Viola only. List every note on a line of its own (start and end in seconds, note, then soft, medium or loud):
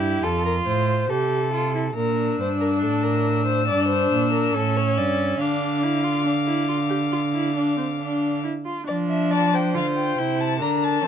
0.00 0.25 E4 medium
0.23 1.09 F4 medium
1.10 1.52 G4 medium
1.53 1.74 F4 medium
1.75 1.83 E4 medium
1.97 3.65 D4 medium
3.69 4.56 D4 medium
4.54 5.42 C#4 medium
5.41 5.84 D4 medium
5.83 6.05 E4 medium
6.04 6.24 F4 soft
6.25 6.33 D4 soft
6.47 6.68 E4 medium
6.68 6.76 F4 medium
6.89 6.97 G4 medium
7.12 7.20 F4 medium
7.34 7.55 E4 soft
7.56 7.77 D4 soft
7.77 7.85 C4 soft
8.00 8.43 D4 medium
8.44 8.52 E4 soft
8.65 8.86 F4 medium
8.87 9.75 D4 medium
9.74 10.20 F4 medium
10.18 10.61 E4 medium
10.61 11.05 D4 medium
11.04 11.07 C4 medium